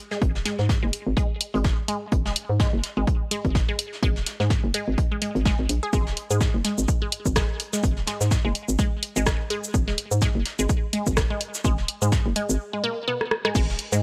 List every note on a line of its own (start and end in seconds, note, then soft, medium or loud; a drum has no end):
0.11 0.15 G#3 medium
0.11 snare soft
0.22 0.37 G#1 medium
0.22 kick loud
0.22 closed hi-hat medium
0.35 0.43 D#1 medium
0.35 snare soft
0.45 0.50 G#3 loud
0.45 snare medium
0.45 closed hi-hat medium
0.58 0.77 G#2 medium
0.58 snare soft
0.69 kick loud
0.69 snare loud
0.69 closed hi-hat medium
0.83 0.91 F#1 medium
0.83 0.86 G#3 medium
0.93 closed hi-hat medium
1.07 1.15 G#1 medium
1.17 1.22 G#3 loud
1.17 kick loud
1.17 closed hi-hat medium
1.40 closed hi-hat medium
1.40 closed hi-hat loud
1.54 1.72 G#1 loud
1.54 1.58 G#3 medium
1.54 closed hi-hat soft
1.64 kick loud
1.64 snare loud
1.64 closed hi-hat medium
1.88 1.93 G#3 loud
1.88 closed hi-hat medium
2.11 2.27 G#1 medium
2.11 kick loud
2.11 closed hi-hat medium
2.25 2.34 D#1 medium
2.25 2.29 G#3 medium
2.25 snare medium
2.35 closed hi-hat medium
2.35 closed hi-hat loud
2.49 2.67 G#2 medium
2.60 2.65 G#3 loud
2.60 kick loud
2.60 snare loud
2.60 closed hi-hat medium
2.73 2.81 F#1 loud
2.83 snare soft
2.83 closed hi-hat medium
2.83 closed hi-hat loud
2.97 3.05 G#1 medium
2.97 3.01 G#3 medium
3.07 kick loud
3.07 closed hi-hat medium
3.31 3.36 G#3 loud
3.31 closed hi-hat loud
3.31 closed hi-hat medium
3.44 3.63 G#1 loud
3.44 kick medium
3.44 closed hi-hat soft
3.55 kick loud
3.55 snare loud
3.55 closed hi-hat medium
3.69 3.72 G#3 medium
3.79 closed hi-hat loud
3.79 closed hi-hat medium
3.93 snare soft
4.03 4.18 G#1 medium
4.03 4.08 G#3 loud
4.03 kick loud
4.03 closed hi-hat medium
4.16 4.24 D#1 medium
4.16 snare soft
4.26 snare medium
4.26 closed hi-hat loud
4.26 closed hi-hat medium
4.40 4.58 G#2 medium
4.40 4.44 G#3 medium
4.40 snare soft
4.50 kick loud
4.50 snare loud
4.50 closed hi-hat medium
4.64 4.72 F#1 loud
4.74 4.79 G#3 loud
4.74 closed hi-hat medium
4.88 4.96 G#1 medium
4.98 kick loud
4.98 closed hi-hat medium
5.11 5.15 G#3 medium
5.22 5.29 G#3 medium
5.22 closed hi-hat loud
5.22 closed hi-hat medium
5.35 5.53 G#1 loud
5.35 closed hi-hat soft
5.45 5.50 G#3 loud
5.45 kick loud
5.45 snare loud
5.45 closed hi-hat medium
5.59 5.67 G#1 medium
5.69 5.80 A#1 medium
5.69 closed hi-hat loud
5.69 closed hi-hat medium
5.83 5.87 G#4 loud
5.93 6.08 G#1 loud
5.93 5.98 G#3 loud
5.93 kick loud
5.93 closed hi-hat medium
5.93 shaker soft
6.07 6.15 D#1 medium
6.07 snare medium
6.17 closed hi-hat medium
6.30 6.49 G#2 medium
6.30 6.36 G#3 medium
6.30 shaker soft
6.40 kick loud
6.40 snare loud
6.40 closed hi-hat medium
6.40 shaker soft
6.54 6.62 F#1 loud
6.64 6.69 G#3 loud
6.64 snare medium
6.64 closed hi-hat medium
6.78 6.86 G#1 medium
6.78 shaker soft
6.88 kick loud
6.88 closed hi-hat medium
6.88 shaker soft
7.02 7.07 G#3 medium
7.12 closed hi-hat medium
7.12 closed hi-hat loud
7.26 7.44 G#1 loud
7.26 kick medium
7.26 closed hi-hat soft
7.26 shaker medium
7.36 7.41 G#3 loud
7.36 kick loud
7.36 cross-stick loud
7.36 snare loud
7.36 closed hi-hat medium
7.36 shaker soft
7.60 closed hi-hat medium
7.73 7.79 G#3 medium
7.73 snare soft
7.73 shaker medium
7.84 7.99 G#1 medium
7.84 kick loud
7.84 closed hi-hat medium
7.84 shaker soft
7.97 8.05 D#1 medium
7.97 snare soft
8.07 8.12 G#3 loud
8.07 snare medium
8.07 closed hi-hat medium
8.21 8.39 G#2 medium
8.21 snare soft
8.21 shaker soft
8.31 kick loud
8.31 snare loud
8.31 closed hi-hat medium
8.31 shaker soft
8.45 8.53 F#1 loud
8.45 8.50 G#3 medium
8.55 closed hi-hat medium
8.68 8.77 G#1 medium
8.68 shaker medium
8.79 8.84 G#3 loud
8.79 kick loud
8.79 closed hi-hat medium
8.79 shaker soft
9.03 closed hi-hat medium
9.16 9.34 G#1 loud
9.16 9.22 G#3 medium
9.16 closed hi-hat soft
9.16 shaker medium
9.26 kick loud
9.26 cross-stick loud
9.26 snare loud
9.26 closed hi-hat medium
9.26 shaker soft
9.50 9.55 G#3 loud
9.50 closed hi-hat medium
9.64 shaker medium
9.74 9.89 G#1 medium
9.74 kick loud
9.74 closed hi-hat medium
9.74 shaker soft
9.88 9.96 D#1 medium
9.88 9.93 G#3 medium
9.88 snare medium
9.98 closed hi-hat medium
10.11 10.29 G#2 medium
10.11 shaker medium
10.21 10.27 G#3 loud
10.21 kick loud
10.21 snare loud
10.21 closed hi-hat medium
10.21 shaker soft
10.35 10.43 F#1 loud
10.45 snare medium
10.45 closed hi-hat medium
10.59 10.67 G#1 medium
10.59 10.65 G#3 medium
10.59 shaker medium
10.69 kick loud
10.69 closed hi-hat medium
10.69 shaker soft
10.93 10.98 G#3 loud
10.93 closed hi-hat medium
11.07 11.25 G#1 loud
11.07 kick medium
11.07 closed hi-hat soft
11.07 shaker medium
11.17 kick loud
11.17 cross-stick loud
11.17 snare loud
11.17 closed hi-hat medium
11.17 shaker soft
11.30 11.36 G#3 medium
11.40 closed hi-hat medium
11.54 snare soft
11.54 shaker medium
11.64 11.79 G#1 loud
11.64 11.69 G#3 loud
11.64 kick loud
11.64 closed hi-hat medium
11.64 shaker soft
11.78 11.86 D#1 medium
11.78 snare soft
11.88 closed hi-hat medium
12.02 12.20 G#2 medium
12.02 12.07 G#3 medium
12.02 shaker medium
12.12 kick loud
12.12 snare loud
12.12 closed hi-hat medium
12.12 shaker soft
12.26 12.34 F#1 medium
12.35 12.41 G#3 loud
12.35 closed hi-hat medium
12.49 12.58 G#1 medium
12.49 shaker medium
12.73 12.79 G#3 medium
12.84 12.88 A#3 loud
13.07 13.12 B3 medium
13.21 cross-stick medium
13.31 cross-stick medium
13.45 13.48 G#3 loud
13.45 cross-stick medium
13.55 13.70 G#1 medium
13.55 13.60 G#3 loud
13.55 kick loud
13.55 closed hi-hat loud
13.55 crash loud
13.55 shaker soft
13.69 13.77 D#1 medium
13.69 snare medium
13.78 closed hi-hat medium
13.92 14.03 G#2 medium
13.92 13.98 G#3 medium
13.92 shaker medium